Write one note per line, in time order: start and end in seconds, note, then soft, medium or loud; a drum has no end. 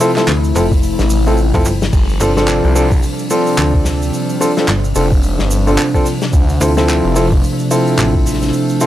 0.00 1.89 C3 medium
0.00 1.89 F3 medium
0.00 1.89 A3 medium
0.00 0.10 C4 medium
0.00 1.91 E4 medium
0.00 0.10 E4 medium
0.00 0.10 F4 medium
0.00 0.10 A4 loud
0.00 open hi-hat medium
0.00 cabasa medium
0.16 0.23 C4 medium
0.16 0.23 E4 medium
0.16 0.23 F4 medium
0.16 0.23 A4 medium
0.16 clap soft
0.16 snare medium
0.16 open hi-hat medium
0.16 cabasa soft
0.27 0.53 D2 loud
0.27 clap loud
0.27 open hi-hat medium
0.27 cabasa medium
0.44 open hi-hat soft
0.44 cabasa soft
0.55 0.97 F1 loud
0.55 0.65 C4 medium
0.55 0.65 E4 medium
0.55 0.65 F4 medium
0.55 0.65 A4 medium
0.55 open hi-hat medium
0.55 cabasa medium
0.71 kick loud
0.71 open hi-hat medium
0.71 cabasa soft
0.83 open hi-hat medium
0.83 cabasa medium
0.99 1.52 A1 medium
0.99 snare medium
0.99 open hi-hat soft
0.99 cabasa soft
1.10 open hi-hat medium
1.10 cabasa medium
1.26 1.37 C4 medium
1.26 1.37 E4 medium
1.26 1.37 F4 medium
1.26 1.37 A4 medium
1.26 open hi-hat medium
1.26 cabasa soft
1.37 cabasa soft
1.54 1.64 F1 loud
1.54 1.64 C4 medium
1.54 1.64 E4 medium
1.54 1.64 F4 medium
1.54 1.64 A4 loud
1.54 kick medium
1.54 open hi-hat soft
1.54 cabasa soft
1.65 1.91 G1 loud
1.65 open hi-hat medium
1.65 cabasa medium
1.82 snare medium
1.82 open hi-hat medium
1.82 cabasa soft
1.93 2.19 G1 loud
1.93 8.86 C3 medium
1.93 8.86 F3 medium
1.93 6.29 G3 medium
1.93 8.86 D4 medium
1.93 kick loud
1.93 open hi-hat medium
1.93 crash medium
1.93 cabasa medium
2.09 open hi-hat soft
2.09 cabasa soft
2.20 2.62 G1 loud
2.20 2.30 C4 medium
2.20 2.30 D4 medium
2.20 2.30 F4 medium
2.20 2.30 A4 loud
2.20 open hi-hat medium
2.20 cabasa loud
2.37 2.73 C4 medium
2.37 2.73 D4 medium
2.37 2.73 F4 medium
2.37 2.73 A4 loud
2.37 snare medium
2.37 open hi-hat medium
2.37 cabasa soft
2.47 clap loud
2.47 open hi-hat medium
2.47 cabasa soft
2.64 3.01 C2 loud
2.64 open hi-hat soft
2.76 2.85 C4 loud
2.76 2.85 D4 medium
2.76 2.85 F4 medium
2.76 2.85 A4 loud
2.76 open hi-hat medium
2.76 cabasa medium
2.92 kick loud
2.92 open hi-hat medium
2.92 cabasa soft
3.03 open hi-hat medium
3.03 cabasa medium
3.19 open hi-hat soft
3.19 cabasa soft
3.30 4.38 C4 medium
3.30 4.38 D4 medium
3.30 4.38 F4 medium
3.30 4.38 A4 loud
3.30 open hi-hat medium
3.30 cabasa loud
3.47 open hi-hat medium
3.47 cabasa soft
3.58 4.11 D2 medium
3.58 clap loud
3.58 open hi-hat medium
3.58 cabasa soft
3.74 kick medium
3.74 open hi-hat soft
3.85 snare soft
3.85 open hi-hat medium
3.85 cabasa medium
4.01 open hi-hat soft
4.01 cabasa soft
4.13 open hi-hat medium
4.13 cabasa medium
4.29 open hi-hat soft
4.29 cabasa soft
4.40 4.50 C4 medium
4.40 4.50 D4 medium
4.40 4.50 F4 medium
4.40 4.50 A4 loud
4.40 open hi-hat medium
4.40 cabasa loud
4.57 4.63 C4 medium
4.57 4.63 D4 medium
4.57 4.63 F4 medium
4.57 4.63 A4 medium
4.57 snare medium
4.57 cabasa soft
4.68 4.94 G1 loud
4.68 clap loud
4.68 open hi-hat soft
4.68 cabasa medium
4.84 open hi-hat soft
4.84 cabasa soft
4.95 5.37 F1 loud
4.95 5.05 C4 medium
4.95 5.05 D4 medium
4.95 5.05 F4 medium
4.95 5.05 A4 medium
4.95 open hi-hat medium
4.95 cabasa medium
5.12 kick loud
5.12 open hi-hat soft
5.12 cabasa soft
5.23 open hi-hat medium
5.23 cabasa medium
5.39 5.76 G1 medium
5.39 snare medium
5.39 open hi-hat soft
5.39 cabasa soft
5.50 open hi-hat medium
5.50 cabasa loud
5.67 5.77 C4 medium
5.67 5.77 D4 medium
5.67 5.77 F4 medium
5.67 5.77 A4 medium
5.67 open hi-hat medium
5.67 cabasa soft
5.78 clap loud
5.78 open hi-hat medium
5.78 cabasa medium
5.94 6.05 C4 medium
5.94 6.05 D4 medium
5.94 6.05 F4 medium
5.94 6.05 A4 loud
5.94 kick medium
5.94 open hi-hat soft
5.94 cabasa soft
6.05 open hi-hat medium
6.05 cabasa loud
6.21 snare medium
6.21 cabasa soft
6.33 6.59 D2 medium
6.33 8.86 A3 medium
6.33 kick loud
6.33 open hi-hat medium
6.33 cabasa medium
6.49 open hi-hat soft
6.49 cabasa soft
6.60 7.02 D2 loud
6.60 6.70 C4 medium
6.60 6.70 E4 medium
6.60 6.70 F4 medium
6.60 6.70 A4 medium
6.60 open hi-hat medium
6.60 cabasa loud
6.77 7.13 C4 loud
6.77 7.13 E4 medium
6.77 7.13 F4 medium
6.77 7.13 A4 loud
6.77 snare medium
6.77 open hi-hat medium
6.77 cabasa soft
6.88 clap loud
6.88 open hi-hat medium
6.88 cabasa medium
7.04 7.42 F1 loud
7.04 open hi-hat soft
7.16 7.25 C4 medium
7.16 7.25 E4 medium
7.16 7.25 F4 medium
7.16 7.25 A4 loud
7.16 open hi-hat medium
7.16 cabasa medium
7.32 kick loud
7.32 open hi-hat medium
7.32 cabasa soft
7.43 open hi-hat medium
7.43 cabasa medium
7.59 open hi-hat soft
7.59 cabasa soft
7.71 8.78 C4 medium
7.71 8.78 E4 medium
7.71 8.78 F4 medium
7.71 8.78 A4 loud
7.71 open hi-hat medium
7.71 cabasa loud
7.86 open hi-hat medium
7.86 cabasa soft
7.98 8.52 A1 loud
7.98 clap loud
7.98 open hi-hat medium
7.98 cabasa medium
8.15 kick medium
8.26 snare soft
8.26 open hi-hat medium
8.26 cabasa loud
8.34 snare soft
8.42 snare soft
8.42 open hi-hat medium
8.42 cabasa soft
8.47 snare soft
8.53 open hi-hat medium
8.53 cabasa medium
8.69 open hi-hat soft
8.69 cabasa soft
8.80 8.86 C4 medium
8.80 8.86 E4 medium
8.80 8.86 F4 medium
8.80 8.86 A4 loud
8.80 open hi-hat medium
8.80 cabasa loud